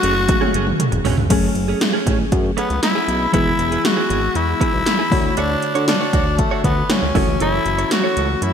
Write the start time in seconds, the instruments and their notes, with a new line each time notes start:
Already playing: fm electric piano F#3 A3 C#4 G#4, tenor saxophone F#4
0.03 analog synth bass F#1, clean electric guitar A3 C#4 G#4, closed hi-hat
0.15 muted clean electric guitar stroke
0.28 muted clean electric guitar stroke, kick, closed hi-hat, high tom
0.41 clean electric guitar A3 C#4 G#4, high tom
0.53 analog synth bass F#1, clean electric guitar A3 C#4 G#4, closed hi-hat
0.67 muted clean electric guitar stroke, mid tom
0.79 muted clean electric guitar stroke, closed hi-hat, mid tom
0.92 analog synth bass E1, muted clean electric guitar stroke, closed hi-hat
1.05 analog synth bass B1, clean electric guitar A3 C#4 G#4, floor tom, open hi-hat
1.17 analog synth bass C#2, muted clean electric guitar stroke, floor tom
1.29 analog synth bass F#1, fm electric piano F#3 A3 C#4 G#4, clean electric guitar A3 C#4 G#4, kick, closed hi-hat, crash
1.55 analog synth bass F#1, muted clean electric guitar stroke, closed hi-hat
1.68 clean electric guitar A3 C#4 G#4
1.81 muted clean electric guitar stroke, snare, closed hi-hat
1.93 clean electric guitar A3 C#4 G#4
2.06 analog synth bass A1, clean electric guitar A3 C#4 G#4, kick, closed hi-hat
2.19 muted clean electric guitar stroke
2.32 analog synth bass F#2, muted clean electric guitar stroke, kick, closed hi-hat
2.45 muted clean electric guitar stroke
2.57 clean electric guitar A3 C#4 G#4, tenor saxophone B3, closed hi-hat
2.70 analog synth bass C#2, muted clean electric guitar stroke, closed hi-hat
2.83 tenor saxophone E4, muted clean electric guitar stroke, snare, closed hi-hat
2.95 clean electric guitar A3 C#4 G#4
3.08 analog synth bass B1, muted clean electric guitar stroke, closed hi-hat
3.21 muted clean electric guitar stroke
3.32 analog synth bass E1, fm electric piano E3 G#3 B3 G#4, clean electric guitar B3 E4 G#4, tenor saxophone E4, kick, closed hi-hat
3.59 analog synth bass E1, muted clean electric guitar stroke, closed hi-hat
3.71 clean electric guitar B3 E4 G#4, closed hi-hat
3.84 tenor saxophone F#4, muted clean electric guitar stroke, snare, closed hi-hat
3.97 clean electric guitar B3 E4 G#4
4.10 analog synth bass G#1, clean electric guitar B3 E4 G#4, closed hi-hat
4.23 muted clean electric guitar stroke
4.35 analog synth bass E2, tenor saxophone E4, muted clean electric guitar stroke, closed hi-hat
4.48 muted clean electric guitar stroke
4.60 clean electric guitar B3 E4 G#4, kick, closed hi-hat
4.73 analog synth bass B1, muted clean electric guitar stroke
4.86 muted clean electric guitar stroke, snare, closed hi-hat
4.99 clean electric guitar B3 E4 G#4
5.10 analog synth bass D2, fm electric piano D3 A3 F#4 C#5, muted clean electric guitar stroke, kick, open hi-hat
5.25 muted clean electric guitar stroke
5.37 analog synth bass D2, tenor saxophone D4, clean electric guitar D4 F#4 C#5, closed hi-hat
5.50 muted clean electric guitar stroke
5.62 muted clean electric guitar stroke, closed hi-hat
5.75 analog synth bass D3, clean electric guitar D4 F#4 C#5, closed hi-hat
5.88 tenor saxophone D4, snare, closed hi-hat
6.00 clean electric guitar D4 F#4 C#5
6.13 analog synth bass D2, clean electric guitar D4 F#4 C#5, kick, closed hi-hat
6.26 muted clean electric guitar stroke
6.39 tenor saxophone A3, muted clean electric guitar stroke, kick, closed hi-hat
6.51 clean electric guitar D4 F#4 C#5
6.64 analog synth bass D2, tenor saxophone B3, clean electric guitar D4 F#4 C#5, kick, closed hi-hat
6.77 muted clean electric guitar stroke
6.90 tenor saxophone C#4, muted clean electric guitar stroke, snare, closed hi-hat
7.02 analog synth bass C#2, muted clean electric guitar stroke
7.14 analog synth bass F#1, fm electric piano E3 A3 C#4 F#4, clean electric guitar E4 A4 C#5, kick, open hi-hat
7.28 analog synth bass C#2, muted clean electric guitar stroke
7.40 analog synth bass F#1, clean electric guitar E4 A4 C#5, tenor saxophone E4, closed hi-hat
7.66 analog synth bass F#1, muted clean electric guitar stroke, closed hi-hat
7.78 clean electric guitar E4 A4 C#5, closed hi-hat
7.91 tenor saxophone F#4, muted clean electric guitar stroke, snare, closed hi-hat
8.04 clean electric guitar E4 A4 C#5
8.16 analog synth bass C#2, clean electric guitar E4 A4 C#5, closed hi-hat
8.29 muted clean electric guitar stroke
8.42 analog synth bass F#2, tenor saxophone E4, muted clean electric guitar stroke, closed hi-hat